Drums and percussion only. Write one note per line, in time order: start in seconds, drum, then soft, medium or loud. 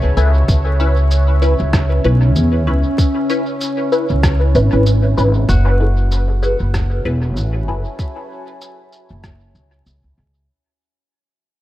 0.17 shaker soft
0.48 kick loud
0.48 shaker medium
1.11 shaker medium
1.42 shaker soft
1.73 kick loud
1.73 cross-stick medium
1.73 shaker medium
2.36 shaker medium
2.98 kick loud
2.98 shaker medium
3.30 shaker soft
3.61 shaker medium
3.92 shaker soft
4.23 kick loud
4.23 cross-stick medium
4.23 shaker medium
4.55 shaker soft
4.86 shaker medium
5.18 shaker soft
5.49 kick loud
5.49 shaker medium
6.12 shaker medium
6.43 shaker soft
6.74 kick medium
6.74 cross-stick medium
6.74 shaker soft
7.37 shaker soft
7.99 kick loud
7.99 shaker medium
8.61 shaker medium
8.92 shaker soft
9.24 kick medium
9.24 cross-stick medium
9.24 shaker soft
9.55 shaker soft
9.86 shaker soft